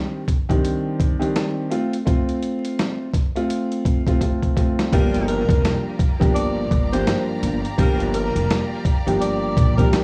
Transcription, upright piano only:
0.00 0.21 D#3 medium
0.00 0.21 G3 medium
0.00 0.21 C4 medium
0.00 0.21 D4 medium
0.00 0.21 G4 loud
0.49 1.14 D#3 loud
0.49 1.14 G3 medium
0.49 1.14 C4 medium
0.49 1.14 D4 medium
0.49 1.14 G4 medium
1.19 1.70 D#3 medium
1.19 1.70 G3 medium
1.19 1.70 C4 medium
1.19 1.71 D4 medium
1.19 1.71 G4 loud
1.70 1.94 A3 medium
1.70 1.94 C4 medium
1.70 1.95 F4 loud
2.06 3.06 A3 medium
2.06 3.07 C4 medium
2.06 3.07 F4 loud
3.36 4.00 A3 medium
3.36 4.00 C4 medium
3.36 4.01 F4 loud
4.07 4.20 A3 medium
4.07 4.20 C4 medium
4.07 4.21 F4 loud
4.21 4.54 A3 medium
4.21 4.55 C4 medium
4.21 4.55 F4 medium
4.56 4.90 A3 medium
4.56 4.90 C4 medium
4.56 4.90 F4 medium
4.92 5.93 F3 medium
4.92 5.93 G3 medium
4.92 5.93 A#3 medium
4.92 5.93 D4 loud
4.92 5.93 G4 loud
6.20 6.85 F3 medium
6.20 6.85 G3 medium
6.20 6.85 A#3 medium
6.20 6.85 D4 medium
6.20 6.85 G4 loud
6.92 7.57 F3 medium
6.92 7.57 G3 medium
6.92 7.57 A#3 medium
6.92 7.57 D4 medium
6.92 7.58 G4 loud
7.78 8.78 F3 loud
7.78 8.78 G3 medium
7.78 8.79 A#3 medium
7.78 8.79 D4 medium
7.78 8.79 G4 loud
9.07 9.71 F3 medium
9.07 9.72 G3 medium
9.07 9.72 A#3 medium
9.07 9.72 D4 medium
9.07 9.72 G4 loud
9.78 9.90 F3 medium
9.78 9.90 G3 medium
9.78 9.91 A#3 medium
9.78 9.91 D4 medium
9.78 9.91 G4 loud
9.91 10.04 F3 medium
9.91 10.04 G3 medium
9.91 10.04 A#3 medium
9.91 10.04 D4 medium
9.91 10.04 G4 medium

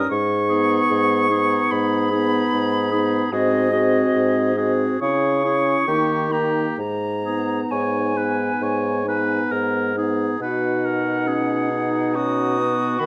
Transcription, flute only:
0.10 1.72 C#6 medium
1.71 3.34 B5 medium
3.32 4.71 D#5 medium
5.00 6.33 C#6 medium
6.32 6.77 A#5 medium
6.78 7.72 A#5 medium
7.71 9.51 G#5 medium
10.40 12.16 F#5 medium
12.14 13.01 D#6 medium
12.99 13.06 B5 medium

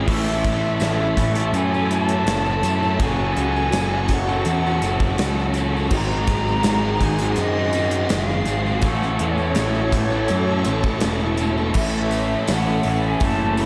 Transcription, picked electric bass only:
0.08 0.41 A1 loud
0.44 0.78 A1 medium
0.80 1.14 A1 medium
1.17 1.51 A1 medium
1.53 2.22 F#2 loud
2.26 2.60 F#1 medium
2.63 2.97 F#2 medium
2.99 3.33 F#1 loud
3.37 3.70 C#2 medium
3.73 4.42 F#1 medium
4.46 4.79 E2 medium
4.82 5.16 F#1 loud
5.19 5.88 C#2 medium
5.91 6.25 G#1 medium
6.28 6.61 G#1 medium
6.64 6.98 G#1 medium
7.00 7.34 G#1 medium
7.38 8.07 F#2 medium
8.11 8.44 F#1 medium
8.47 8.81 G#1 medium
8.83 9.17 A1 medium
9.20 9.54 E2 medium
9.57 10.26 A1 medium
10.30 10.64 F#2 medium
10.66 11.00 A1 medium
11.03 11.72 E1 medium
11.75 12.35 A1 medium
12.49 12.79 A1 loud
12.85 13.15 A1 medium
13.21 13.66 F#1 medium

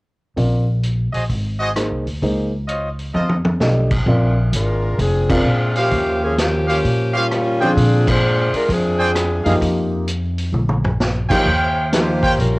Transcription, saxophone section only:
4.55 4.97 G#3 medium
4.55 4.97 D4 medium
4.55 4.97 F4 medium
4.55 4.97 A#4 medium
5.00 5.31 F3 medium
5.00 5.31 C4 medium
5.00 5.30 D4 medium
5.00 5.31 G#4 medium
5.32 5.77 G#3 medium
5.32 5.77 C4 medium
5.32 5.77 D4 medium
5.32 5.77 F4 medium
5.79 6.23 F3 medium
5.79 6.23 A#3 medium
5.79 6.23 C#4 medium
5.79 6.24 G4 medium
6.24 6.38 F3 medium
6.24 6.38 A#3 medium
6.24 6.38 C#4 medium
6.24 6.38 G#4 medium
6.39 6.69 F3 medium
6.39 6.69 A#3 medium
6.39 6.68 C#4 medium
6.39 6.68 G4 medium
6.70 7.13 F3 medium
6.70 7.12 A#3 medium
6.70 7.12 C#4 medium
6.70 7.12 G4 medium
7.16 7.62 G3 medium
7.16 7.62 A#3 medium
7.16 7.62 C#4 medium
7.16 7.62 F4 medium
7.64 8.09 F3 medium
7.64 8.09 C4 medium
7.64 8.08 D4 medium
7.64 8.09 G#4 medium
8.09 8.54 G#3 medium
8.09 8.55 D4 loud
8.09 8.54 F4 medium
8.09 8.54 C5 loud
8.56 8.69 G#3 medium
8.56 8.69 D4 medium
8.56 8.69 F4 medium
8.56 8.69 A#4 medium
8.73 9.63 F3 medium
8.73 9.64 C4 medium
8.73 9.63 D4 medium
8.73 9.63 G#4 loud
11.94 12.36 A#3 medium
11.94 12.37 F4 medium
11.94 12.36 G4 medium
11.94 12.36 C5 medium
12.39 12.59 G3 medium
12.39 12.59 C#4 medium
12.39 12.59 F4 medium
12.39 12.59 A#4 medium

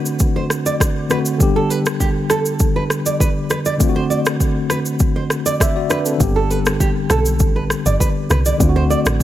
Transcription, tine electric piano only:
0.00 1.05 D3 medium
0.00 1.06 A3 medium
0.00 1.07 C4 medium
0.00 1.07 F#4 medium
1.09 1.36 D3 medium
1.09 1.40 A3 soft
1.09 1.40 C4 soft
1.09 1.41 F#4 medium
1.38 3.75 D3 medium
1.38 3.76 G3 medium
1.38 3.77 B3 medium
1.43 3.77 G4 medium
3.78 6.15 D3 medium
3.78 6.16 A3 medium
3.78 5.57 C4 medium
3.83 3.88 F4 medium
3.89 5.61 F#4 medium
5.60 5.75 E5 medium
5.76 5.90 F#4 medium
5.76 5.89 D5 medium
5.90 6.05 D4 medium
5.90 6.05 B4 medium
6.06 6.35 C4 medium
6.06 6.34 A4 medium
6.18 8.55 D3 medium
6.18 8.56 G3 medium
6.18 8.57 B3 medium
6.23 8.57 G4 medium
8.58 9.23 D3 medium
8.58 9.23 A3 medium
8.58 9.23 C4 medium
8.63 8.68 F4 medium
8.69 9.23 F#4 medium

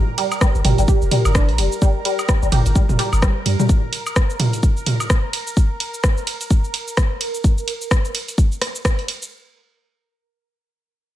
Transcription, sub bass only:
0.55 0.62 G1 loud
0.65 0.74 G1 loud
0.78 0.85 G1 loud
1.02 1.09 F1 loud
1.25 1.50 G1 loud
1.49 1.60 A#1 medium
1.58 1.68 F1 medium
2.42 2.49 G1 loud
2.52 2.62 G1 loud
2.66 2.73 G1 loud
2.89 2.96 F1 loud
3.13 3.28 G1 loud
3.46 3.56 G2 medium

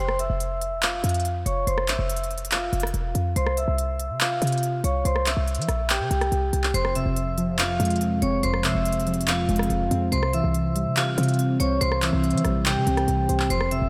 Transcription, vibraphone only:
0.00 0.16 C5 loud
0.00 0.16 C6 medium
0.19 0.79 E5 medium
0.19 0.79 E6 medium
0.83 1.43 F4 medium
0.83 1.42 F5 medium
1.46 1.64 C#5 medium
1.46 1.64 C#6 medium
1.67 1.85 C5 loud
1.67 1.85 C6 medium
1.88 2.48 E5 medium
1.88 2.48 E6 medium
2.52 3.33 F4 medium
2.52 3.32 F5 medium
3.36 3.54 C5 loud
3.36 3.54 C6 medium
3.57 4.17 E5 medium
3.57 4.17 E6 medium
4.21 4.81 F4 medium
4.21 4.80 F5 medium
4.84 5.02 C#5 medium
4.84 5.02 C#6 medium
5.05 5.23 C5 loud
5.05 5.23 C6 medium
5.27 5.86 E5 medium
5.27 5.86 E6 medium
5.90 6.71 G4 medium
5.90 6.70 G5 medium
6.74 6.92 C5 loud
6.74 6.93 C6 medium
6.96 7.55 E5 medium
6.96 7.55 E6 medium
7.59 8.19 F4 medium
7.59 8.18 F5 medium
8.22 8.40 C#5 medium
8.22 8.40 C#6 medium
8.43 8.61 C5 loud
8.43 8.62 C6 medium
8.64 9.24 E5 medium
8.64 9.24 E6 medium
9.28 10.09 F4 medium
9.28 10.08 F5 medium
10.12 10.30 C5 loud
10.12 10.30 C6 medium
10.33 10.93 E5 medium
10.33 10.93 E6 medium
10.97 11.57 F4 medium
10.97 11.56 F5 medium
11.60 11.78 C#5 medium
11.60 11.78 C#6 medium
11.81 11.99 C5 loud
11.81 11.99 C6 medium
12.03 12.62 E5 medium
12.03 12.62 E6 medium
12.66 13.47 G4 medium
12.66 13.46 G5 medium
13.50 13.68 C5 loud
13.50 13.69 C6 medium
13.71 13.89 E5 medium
13.71 13.89 E6 medium

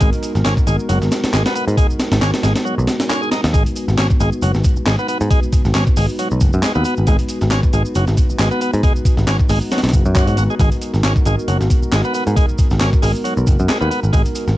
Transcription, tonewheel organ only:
0.00 0.10 G#3 medium
0.44 0.54 C#4 medium
0.67 0.76 G#3 medium
0.89 0.98 F#3 medium
1.33 1.43 G#3 medium
1.46 1.54 B3 medium
1.55 1.65 B3 loud
1.77 1.87 G#3 medium
2.21 2.31 C#4 medium
2.43 2.53 G#3 medium
2.65 2.75 F#3 medium
3.09 3.21 C#4 medium
3.22 3.29 G#4 medium
3.31 3.41 D#4 medium
3.53 3.63 G#3 medium
3.98 4.07 C#4 medium
4.20 4.30 G#3 medium
4.42 4.52 F#3 medium
4.87 4.96 G#3 medium
4.99 5.07 B3 medium
5.08 5.18 B3 loud
5.31 5.40 G#3 medium
5.75 5.84 C#4 medium
5.97 6.06 G#3 medium
6.19 6.28 F#3 medium
6.63 6.72 G#3 medium
6.75 6.84 B3 medium
6.85 6.94 B3 loud
7.07 7.16 G#3 medium
7.51 7.61 C#4 medium
7.73 7.83 G#3 medium
7.96 8.05 F#3 medium
8.40 8.49 G#3 medium
8.51 8.60 B3 medium
8.62 8.71 B3 loud
8.83 8.93 G#3 medium
9.28 9.37 C#4 medium
9.49 9.59 G#3 medium
9.72 9.81 F#3 medium
10.16 10.27 F#3 medium
10.28 10.37 F#3 medium
10.38 10.43 F#4 medium
10.50 10.55 G#3 medium
10.60 10.69 G#3 medium
11.04 11.13 C#4 medium
11.26 11.35 G#3 medium
11.48 11.57 F#3 medium
11.92 12.02 G#3 medium
12.05 12.13 B3 medium
12.15 12.24 B3 loud
12.36 12.46 G#3 medium
12.80 12.90 C#4 medium
13.02 13.12 G#3 medium
13.24 13.34 F#3 medium
13.68 13.78 G#3 medium
13.81 13.89 B3 medium
13.90 14.00 B3 loud
14.13 14.22 G#3 medium

